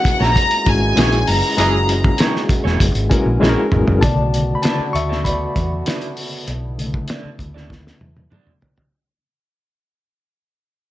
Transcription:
Already playing: french horn section A#2 E3 G#3 F#4, reed electric piano G#3 C#4 E4 F#4 A#4, violin section F#5
0.05 muted fingered electric bass stroke, kick, closed hi-hat
0.20 fingered electric bass A#1, clean electric guitar A#3 E4 G#4 C#5, violin section A#5, snare
0.36 kick, closed hi-hat
0.51 closed hi-hat
0.65 fingered electric bass G#1, reed electric piano G#3 C#4 E4 F#4 G#4, violin section G#5, kick, closed hi-hat
0.96 fingered electric bass A#1, reed electric piano G#3 C#4 E4 F#4 G#4, clean electric guitar A#3 E4 G#4 C#5, snare, closed hi-hat
1.12 closed hi-hat
1.27 fingered electric bass F#1, violin section A#5, open hi-hat
1.57 fingered electric bass F#1, horn section E3 C#4 G#4, reed electric piano G#3 C#4 E4 F#4 G#4, closed hi-hat
1.89 closed hi-hat
2.04 kick
2.18 clean electric guitar A#3 E4 G#4 C#5, snare, closed hi-hat
2.36 snare
2.49 muted fingered electric bass stroke, kick, closed hi-hat
2.64 fingered electric bass E1, clean electric guitar A#3 E4 G#4 C#5, snare
2.80 fingered electric bass F#1, kick, closed hi-hat
2.95 fingered electric bass G#1, closed hi-hat
3.10 reed electric piano G#3 C#4 E4 F#4 A#4 B4 G#5, kick, closed hi-hat
3.26 fingered electric bass A#1
3.40 fingered electric bass A#1, reed electric piano G#3 C#4 E4 F#4 G#4, clean electric guitar A#3 E4 G#4 C#5, snare
3.49 reed electric piano A#4
3.72 fingered electric bass G#1, mid tom
3.88 fingered electric bass F#1, floor tom
4.01 fingered electric bass B1, french horn section B2 A3 B3 F#4, reed electric piano C#3 D3 A3 D5 A5, kick, closed hi-hat
4.34 closed hi-hat
4.55 reed electric piano B5
4.62 clean electric guitar D4 F#4 A4 D5, reed electric piano D5 A5, snare, closed hi-hat
4.79 muted fingered electric bass stroke
4.93 fingered electric bass D2, reed electric piano E5 C#6, closed hi-hat
5.09 clean electric guitar D4 F#4 A4 D5, snare
5.24 reed electric piano D5 B5, kick, closed hi-hat
5.56 fingered electric bass E2, kick, closed hi-hat
5.86 clean electric guitar D4 F#4 A4 D5, snare, closed hi-hat
6.02 closed hi-hat
6.17 open hi-hat
6.48 fingered electric bass B1, french horn section E4, closed hi-hat
6.78 reed electric piano C#3 D3 A3, closed hi-hat
6.94 kick
7.08 clean electric guitar D4 F#4 A4 D5, snare, closed hi-hat
7.25 muted fingered electric bass stroke
7.39 fingered electric bass D2, kick, closed hi-hat
7.54 clean electric guitar D4 F#4 A4 D5, snare
7.70 kick, snare
7.87 snare
8.01 fingered electric bass E2, high tom
8.17 high tom
8.30 clean electric guitar D4 F#4 A4 D5, mid tom
8.47 mid tom
8.62 floor tom
8.78 floor tom

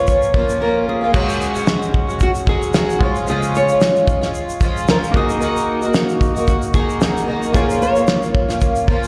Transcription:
Already playing: twelve-string acoustic guitar F3 A#3 C#4 F4, upright piano C#4 F4 C#5
0.07 nylon-string guitar C#5, kick, shaker
0.22 shaker
0.34 twelve-string acoustic guitar F3 A#3 C#4 F4, kick
0.49 shaker
0.60 twelve-string acoustic guitar F3 A#3 C#4 F4, nylon-string guitar A#4
0.89 nylon-string guitar G#4
1.01 twelve-string acoustic guitar A#3 C#4 F4
1.12 twelve-string acoustic guitar F#3 G#3 C#4 F#4, upright piano G#3 F#4 C#5, kick, crash
1.29 shaker
1.41 shaker
1.54 twelve-string acoustic guitar G#3 C#4 F#4, shaker
1.67 snare, shaker
1.82 shaker
1.94 kick
2.07 twelve-string acoustic guitar G#3 C#4 F#4, shaker
2.20 nylon-string guitar F#4, kick, shaker
2.35 shaker
2.46 twelve-string acoustic guitar F#3 G#3 C#4 F#4, nylon-string guitar G#4, kick
2.62 shaker
2.74 twelve-string acoustic guitar F#3 G#3 C#4 F#4, snare, shaker
2.90 shaker
2.99 twelve-string acoustic guitar F3 G#3 C#4 F4, upright piano G#3 F4 C#5, kick
3.16 shaker
3.27 twelve-string acoustic guitar C#3 F3 G#3 C#4 F4, nylon-string guitar G#4, shaker
3.43 shaker
3.55 nylon-string guitar C#5, shaker
3.69 twelve-string acoustic guitar G#3 C#4 F4, shaker
3.81 snare, shaker
3.96 shaker
4.08 kick, shaker
4.21 twelve-string acoustic guitar G#3 C#4 F4, snare, shaker
4.34 shaker
4.49 shaker
4.60 twelve-string acoustic guitar F3 G#3 C#4 F4, kick, shaker
4.77 shaker
4.88 twelve-string acoustic guitar F3 G#3 C#4 F4, nylon-string guitar A#4, snare, shaker
5.04 shaker
5.12 twelve-string acoustic guitar D#3 A#3 D#4, upright piano A#3 F#4, kick
5.16 twelve-string acoustic guitar F#4, nylon-string guitar G#4, upright piano D#5
5.29 shaker
5.39 twelve-string acoustic guitar D#3 A#3 D#4 F#4, shaker
5.56 shaker
5.81 twelve-string acoustic guitar A#3 D#4 F#4, shaker
5.94 snare, shaker
6.09 shaker
6.21 kick, shaker
6.35 twelve-string acoustic guitar A#3 D#4 F#4, shaker
6.48 nylon-string guitar F#4, kick, shaker
6.62 shaker
6.73 twelve-string acoustic guitar D#3 A#3 D#4 F#4, nylon-string guitar G#4, kick, shaker
6.90 shaker
7.00 twelve-string acoustic guitar D#3 A#3 D#4 F#4, snare, shaker
7.17 shaker
7.26 twelve-string acoustic guitar D#3 A#3 D#4 F#4
7.43 shaker
7.52 twelve-string acoustic guitar A#2 F3 A#3 C#4 F4, upright piano A#3 F4, nylon-string guitar G#4, kick, shaker
7.56 upright piano C#5
7.70 shaker
7.82 nylon-string guitar C#5, shaker
7.94 twelve-string acoustic guitar A#3 C#4 F4, shaker
8.08 snare, shaker
8.22 shaker
8.35 kick
8.48 twelve-string acoustic guitar A#3 C#4 F4, snare, shaker
8.61 kick, shaker
8.76 shaker
8.87 twelve-string acoustic guitar F3 A#3 C#4 F4, kick
9.03 shaker

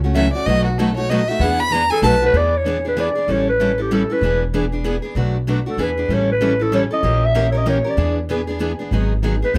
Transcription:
Already playing: upright bass C#2
0.04 steel-string acoustic guitar A3 C#4 F#4
0.15 steel-string acoustic guitar C#3 E3 F#3 A3 C#4 E4 F#4 A4, violin E5
0.33 steel-string acoustic guitar A3 C#4 F#4, violin D5
0.46 upright bass B1, steel-string acoustic guitar B2 F#3 A3 D#4 F#4 B4, violin D#5
0.65 violin F#4
0.78 steel-string acoustic guitar B2 F#3 A3 D#4 F#4 B4, violin A4
0.97 steel-string acoustic guitar A3 D#4 F#4, violin C#5
1.10 steel-string acoustic guitar B2 F#3 A3 D#4 F#4 B4, violin D#5
1.28 steel-string acoustic guitar A3 D#4 F#4, violin E5
1.39 upright bass E2, steel-string acoustic guitar E3 B3 B4, violin F#5
1.43 steel-string acoustic guitar D4 G#4
1.60 violin B5
1.71 steel-string acoustic guitar E3 B3 D4 G#4 B4, violin A#5
1.75 steel-string acoustic guitar G#4
1.90 steel-string acoustic guitar B3 D4 G#4, clarinet A4, violin G#5
2.02 upright bass B1, steel-string acoustic guitar B2 F#3 A3 D#4 F#4 B4, violin A5
2.06 clarinet B4
2.22 steel-string acoustic guitar A3 D#4 F#4, clarinet B4
2.33 upright bass E2, steel-string acoustic guitar E3 B3 D4 G#4 B4
2.37 clarinet D5
2.57 clarinet C#5
2.66 steel-string acoustic guitar E3 B3 D4 G#4 B4
2.85 steel-string acoustic guitar B3 D4 G#4, clarinet B4
2.97 steel-string acoustic guitar E3 B3 D4 G#4 B4, clarinet D5
3.15 steel-string acoustic guitar B3 D4 G#4
3.28 upright bass A1, steel-string acoustic guitar E3 G3 C#4 E4 A4, clarinet C#5
3.49 clarinet B4
3.60 steel-string acoustic guitar E3 G3 C#4 E4 A4
3.78 steel-string acoustic guitar C#4 E4 A4, clarinet G4
3.91 steel-string acoustic guitar E3 G3 C#4 E4 A4, clarinet A4
4.10 steel-string acoustic guitar C#4 E4 A4, clarinet B4
4.21 upright bass E1, steel-string acoustic guitar E3 B3 D4 G#4 B4
4.54 steel-string acoustic guitar E3 B3 D4 G#4 B4
4.72 steel-string acoustic guitar B3 D4 G#4
4.84 steel-string acoustic guitar E3 B3 D4 G#4 B4
5.02 steel-string acoustic guitar B3 D4 G#4
5.15 upright bass B1, steel-string acoustic guitar B2 F#3 A3 D4 F#4 B4
5.47 steel-string acoustic guitar B2 F#3 A3 D4 F#4 B4
5.66 steel-string acoustic guitar A3 D4 F#4, clarinet A4
5.77 upright bass E2, steel-string acoustic guitar E3 B3 D4 G#4 B4
5.83 clarinet B4
5.97 steel-string acoustic guitar B3 D4 G#4
6.08 upright bass A1, steel-string acoustic guitar E3 G3 C#4 E4 A4
6.13 clarinet C#5
6.32 clarinet B4
6.41 steel-string acoustic guitar E3 G3 C#4 E4 A4
6.59 steel-string acoustic guitar C#4 E4 A4, clarinet A4
6.72 steel-string acoustic guitar E3 G3 C#4 E4 A4, clarinet C#5
6.91 steel-string acoustic guitar C#4 E4 A4, clarinet D#5
7.03 upright bass A#1, steel-string acoustic guitar E3 A#3 C#4 G4 A#4
7.25 clarinet E5
7.35 steel-string acoustic guitar E3 A#3 C#4 G4 A#4
7.51 steel-string acoustic guitar C#4 G4 A#4, clarinet C#5
7.57 clarinet D#5
7.66 steel-string acoustic guitar E3 A#3 C#4 G4 A#4, clarinet C#5
7.84 steel-string acoustic guitar C#4 G4 A#4
7.90 clarinet D5
7.97 upright bass E2, steel-string acoustic guitar E3 B3 D4 G#4 B4
8.29 steel-string acoustic guitar E3 B3 D4 G#4 B4
8.47 steel-string acoustic guitar B3 D4 G#4
8.59 steel-string acoustic guitar E3 B3 D4 G#4 B4
8.79 steel-string acoustic guitar B3 D4 G#4
8.91 upright bass G#1, steel-string acoustic guitar D#3 F#3 B3 D#4 G#4
9.23 steel-string acoustic guitar D#3 F#3 B3 D#4 G#4
9.42 steel-string acoustic guitar B3 D#4 G#4, clarinet B4
9.54 upright bass C#2, steel-string acoustic guitar C#3, clarinet C5

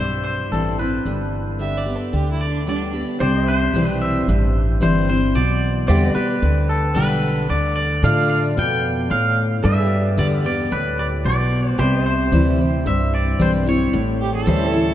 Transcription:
Already playing: upright bass B1, clean electric guitar C5
0.00 steel-string acoustic guitar G2
0.24 clean electric guitar C5
0.51 upright bass A1, steel-string acoustic guitar E3 G3 C4 E4, clean electric guitar A4
0.79 steel-string acoustic guitar C4 E4, clean electric guitar B4
1.05 upright bass G1, steel-string acoustic guitar G2
1.59 steel-string acoustic guitar D3 G3 B3 G4, fiddle E5
1.78 fiddle D5
1.86 steel-string acoustic guitar B3 G4
1.96 fiddle A4
2.13 upright bass D2, steel-string acoustic guitar D3, fiddle G4
2.31 fiddle E4
2.41 clean electric guitar D5
2.49 fiddle D4
2.66 steel-string acoustic guitar D3 G3 B3 G4, fiddle D4, clean electric guitar D5
2.94 steel-string acoustic guitar B3 G4
3.20 upright bass C2, steel-string acoustic guitar C3, pedal steel guitar C5 D5 G5, clean electric guitar C5
3.46 clean electric guitar C5, pedal steel guitar E5
3.74 upright bass B1, steel-string acoustic guitar E3 G3 C4 E4
3.84 clean electric guitar B4
4.02 clean electric guitar E5
4.28 upright bass A1, steel-string acoustic guitar G2
4.81 upright bass G1, steel-string acoustic guitar E3 G3 C4 E4, clean electric guitar C5
5.08 steel-string acoustic guitar C4 E4, clean electric guitar C5
5.35 upright bass B1, steel-string acoustic guitar B2, clean electric guitar D5
5.88 upright bass E2, steel-string acoustic guitar D3 G3 B3 G4, pedal steel guitar C5 E5 G5, clean electric guitar D5
6.08 pedal steel guitar B4
6.14 steel-string acoustic guitar B3 G4, clean electric guitar B4, pedal steel guitar D5, muted upright bass stroke
6.42 upright bass D2, steel-string acoustic guitar D3
6.69 clean electric guitar A4
6.95 upright bass B1, steel-string acoustic guitar D3 G3 B3 G4, clean electric guitar B4
7.50 upright bass D2, steel-string acoustic guitar D3, clean electric guitar D5
7.76 clean electric guitar D5
8.03 upright bass A2, steel-string acoustic guitar D3 A3 D4 F4, pedal steel guitar A4 D5 F5, clean electric guitar F5
8.30 clean electric guitar F5
8.57 upright bass F2, steel-string acoustic guitar B2, clean electric guitar G5
9.10 steel-string acoustic guitar A2, upright bass A2, clean electric guitar F5
9.64 steel-string acoustic guitar G2, upright bass G2, pedal steel guitar A4 B4 D5, clean electric guitar E5
9.89 pedal steel guitar G4
10.17 upright bass E2, steel-string acoustic guitar D3 G3 B3 G4, clean electric guitar D5
10.44 steel-string acoustic guitar B3 G4, clean electric guitar D5
10.72 upright bass D2, steel-string acoustic guitar A2, clean electric guitar B4
10.99 clean electric guitar D5
11.25 upright bass B1, steel-string acoustic guitar B2, clean electric guitar D5
11.79 upright bass C2, steel-string acoustic guitar C3, pedal steel guitar G4 B4 D5, clean electric guitar C5
11.99 pedal steel guitar C5
12.06 clean electric guitar C5, pedal steel guitar E5
12.32 upright bass D2, steel-string acoustic guitar E3 G3 C4 E4
12.59 steel-string acoustic guitar C4 E4
12.86 upright bass C2, steel-string acoustic guitar G2, clean electric guitar E5
13.15 clean electric guitar D5
13.39 upright bass B1, steel-string acoustic guitar E3 G3 C4 E4, clean electric guitar C5
13.66 steel-string acoustic guitar C4 E4, clean electric guitar C#5
13.93 upright bass A1, steel-string acoustic guitar A2
14.21 fiddle G4
14.34 fiddle A4
14.46 upright bass D2, steel-string acoustic guitar E3 G3 C#4 E4, pedal steel guitar A4 C5 E5
14.68 pedal steel guitar C#5
14.73 steel-string acoustic guitar C#4 E4

